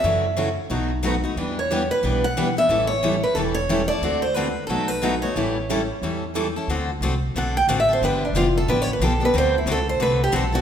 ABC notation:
X:1
M:4/4
L:1/16
Q:"Swing" 1/4=180
K:D
V:1 name="Steel-string acoustic guitar"
e6 z8 z2 | z2 c4 B4 f4 e2- | e2 c4 B2 A2 c4 d2- | d2 =c2 B4 A2 B4 ^c2- |
c12 z4 | z8 f2 g2 (3f2 e2 =c2 | B2 D2 =F2 A2 (3B2 c2 B2 A2 B2 | =c2 E2 A2 c2 B2 G2 A2 F2 |]
V:2 name="Steel-string acoustic guitar"
[F,CEA]2 z2 [F,CEA]2 z2 [B,,F,A,^DFB]2 z2 [B,,F,A,DFB]2 z2 | [E,G,DEB]2 z2 [E,G,DEB]2 z2 [E,G,DEB]2 z2 [E,G,DEB]2 z2 | [E,G,CEA]2 z2 [E,G,CEA]2 z2 [E,G,CEA]2 z2 [E,G,CEA]2 z2 | [D,A,=CFA]2 z2 [D,A,CFA]2 z2 [B,,F,A,^DFB]2 z2 [B,,F,A,DFB]2 z2 |
[E,G,CEA]2 z2 [E,G,CEA]2 z2 [E,G,CEA]2 z2 [E,G,CEA]2 z2 | z16 | z16 | z16 |]
V:3 name="Steel-string acoustic guitar"
[C,E,A,CF]2 z2 [C,E,A,CF]2 z2 [B,,F,A,^DF]2 z2 [B,,F,A,DF]2 [A,DF]2 | [E,B,DG]2 z2 [E,B,DG]2 z2 [E,B,DG]2 z2 [E,B,DG]2 [B,DG]2 | [E,G,CEA]2 z2 [E,G,CEA]2 z2 [E,G,CEA]2 z2 [E,G,CEA]2 [CEA]2 | [D,A,=CFA]2 z2 [D,A,CFA]2 z2 [B,,F,A,^DF]2 z2 [B,,F,A,DF]2 [A,DF]2 |
[E,G,CEA]2 z2 [E,G,CEA]2 z2 [E,G,CEA]2 z2 [E,G,CEA]2 [CEA]2 | [D,A,=CFA]2 z2 [D,A,CFA] z3 [D,A,CFA]2 z2 [D,A,CFA] z [CFA]2 | [D,=F,B,DG]2 z2 [D,F,B,DG] z3 [D,F,B,DG]2 z2 [D,F,B,DG] z [B,DG]2 | [D,A,=CFA]2 z2 [D,A,CFA] z3 [D,A,CFA]2 z2 [D,A,CFA] z [CFA]2 |]
V:4 name="Upright bass" clef=bass
F,,8 B,,,8 | E,,8 B,,,8 | A,,,8 E,,,8 | D,,8 B,,,8 |
A,,,8 E,,8 | D,,4 =C,,4 B,,,4 A,,,4 | G,,,4 =F,,,4 A,,,4 B,,,4 | D,,4 C,,4 =C,,4 B,,,4 |]